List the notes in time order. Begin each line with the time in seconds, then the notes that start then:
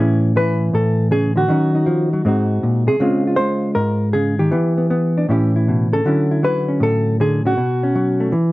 Already playing: A2 G#4
0.00 E3 C#4 E4
0.36 E3 B4
0.73 A2 A4
1.11 C#3 G#4
1.36 D3 F#4
1.48 D#3 F#3 C#4 D#4
1.75 D#4
1.86 F3
2.13 F#3
2.25 G#2 G#3 C4 D#4 F#4
2.63 A#2
2.87 C3 G#4
3.00 C#3 G#3 C4 F4
3.27 F4
3.36 G#3 C5
3.75 G#2 A#4
4.13 C#3 G#4
4.39 D#3 G4
4.51 E3 B3
4.78 B3
4.90 B3
5.18 D4
5.29 A2 E3 C#4 E4 G4
5.56 E4
5.68 B2
5.93 C#3 A4
6.05 D3 F#3 C#4 E4
6.31 E4
6.43 F#3 B4
6.68 C#4
6.80 A2 A4
7.20 D3 G#4
7.45 C#3 F#4
7.57 B2
7.83 C#4
7.95 F#3
8.20 A3
8.32 E3